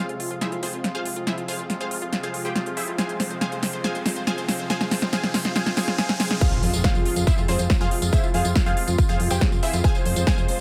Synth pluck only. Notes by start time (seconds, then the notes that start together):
0.09 F4
0.20 F4
0.31 F4
0.41 E4 G#4 C5 E5
0.52 F4
0.63 C4 F4 G#4 C5
0.73 F4
0.84 F4
0.95 F4 G#4 C5 F5
1.06 F4
1.16 F4
1.27 E4 G#4 C5 E5
1.38 F4
1.48 F4 G#4 C5 F5
1.59 F4
1.70 F4
1.81 F4 G#4 C5 F5
1.91 F4
2.02 F4
2.13 F4
2.23 F4 G#4 C5 F5
2.34 F4
2.45 G4 G#4 C5 G5
2.55 F4
2.66 F4
2.77 E4 G#4 C5 E5
2.88 F4
2.98 G#4 C5 F5 G#5
3.09 C5
3.20 C5
3.31 C5
3.41 G#4 C5 F5 G#5
3.52 C5
3.63 C5
3.73 C5
3.84 G#4 C5 F5 G#5
3.95 C5
4.06 C5
4.16 C5
4.27 G#4 C5 F5 G#5
4.38 C5
4.49 C5
4.59 C5
4.70 G#4 C5 F5 G#5
4.81 C5
4.91 C5
5.02 C5
5.13 G#4 C5 F5 G#5
5.23 C5
5.34 C5
5.45 C5
5.56 G#4 C5 F5 G#5
5.66 C5
5.77 G#4 C5 F5 G#5
5.88 C5
5.98 G#4 C5 F5 G#5
6.09 C5
6.20 G#4 C5 F5 G#5
6.31 C5
6.42 F4 G#4 C5 F5
6.52 F4
6.63 F4
6.74 F4
6.84 F4 G#4 C5 F5
6.95 F4
7.06 F4
7.17 F4
7.27 E4 G#4 C5 E5
7.38 F4
7.49 C4 F4 G#4 C5
7.59 F4
7.70 F4
7.81 F4 G#4 C5 F5
7.92 F4
8.02 F4
8.13 E4 G#4 C5 E5
8.23 F4
8.34 F4 G#4 C5 F5
8.45 F4
8.56 F4
8.66 F4 G#4 C5 F5
8.77 F4
8.88 F4
8.98 F4
9.09 F4 G#4 C5 F5
9.20 F4
9.31 G4 G#4 C5 G5
9.41 F4
9.52 F4
9.63 E4 G#4 C5 E5
9.73 F4
9.84 G#4 C5 F5 G#5
9.95 C5
10.06 C5
10.16 C5
10.27 G#4 C5 F5 G#5
10.38 C5
10.49 C5